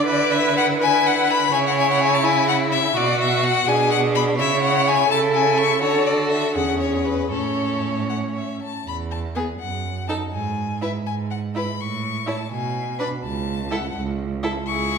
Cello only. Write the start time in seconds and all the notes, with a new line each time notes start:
Already playing: D3
1.53 C#3
2.96 B2
3.67 B2
4.39 C#3
5.11 C#3
5.82 D3
6.56 E2
7.31 A2
8.86 E2
9.60 F#2
10.33 G#2
11.06 G#2
11.79 A2
12.51 B2
13.24 C#2
13.95 C#2
14.67 C#2